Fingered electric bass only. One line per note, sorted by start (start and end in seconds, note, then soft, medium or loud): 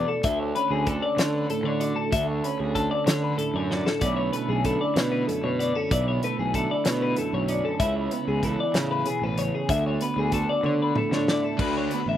0.24 0.51 D2 medium
0.70 0.98 D2 medium
1.17 1.45 D3 medium
1.64 1.92 D3 medium
2.13 2.40 D2 medium
2.60 2.87 D2 medium
3.07 3.34 D3 medium
3.54 3.81 F#2 medium
4.02 4.29 B1 medium
4.48 4.76 B1 medium
4.96 5.23 B2 medium
5.44 5.71 B2 medium
5.91 6.18 B1 medium
6.39 6.66 B1 medium
6.86 7.13 B2 medium
7.33 7.60 B1 medium
7.80 8.07 C#2 medium
8.28 8.55 C#2 medium
8.74 9.02 C#3 medium
9.22 9.49 A1 medium
9.69 9.96 D2 medium
10.16 10.44 D2 medium
10.63 10.91 D3 medium
11.11 11.39 D3 medium
11.59 11.87 D2 medium
12.06 12.17 A1 medium